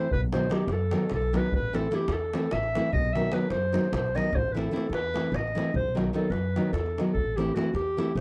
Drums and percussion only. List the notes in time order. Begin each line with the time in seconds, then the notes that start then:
0.11 davul low
0.32 davul high
0.51 davul high
0.68 davul high
0.91 davul high
1.10 davul high
1.22 davul high
1.34 davul high
1.52 davul low
1.75 davul high
1.92 davul high
2.08 davul high
2.33 davul high
2.51 davul high
2.63 davul high
2.75 davul high
2.94 davul low
3.05 davul high
3.16 davul high
3.32 davul high
3.41 davul high
3.50 davul high
3.74 davul high
3.84 davul high
3.93 davul high, davul low
4.06 davul high
4.18 davul high
4.35 davul low
4.57 davul high
4.76 davul high
4.93 davul high
5.16 davul high
5.34 davul high
5.47 davul high
5.58 davul high
5.76 davul low
5.97 davul high
6.14 davul high
6.32 davul high
6.56 davul high
6.74 davul high
6.86 davul high
6.98 davul high
7.17 davul low
7.38 davul high
7.57 davul high
7.75 davul high
7.99 davul high
8.17 davul high